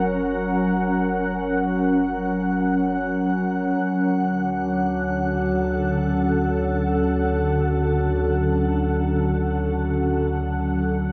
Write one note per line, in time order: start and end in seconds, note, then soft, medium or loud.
0.00 3.75 F#1 medium
0.00 3.81 F#3 medium
0.00 11.12 F#3 medium
0.00 3.81 C#4 medium
0.00 11.12 C#4 medium
0.00 3.80 A#4 medium
0.00 11.12 F#5 medium
3.81 11.12 D2 medium
3.81 11.12 D3 medium
4.72 11.12 A4 medium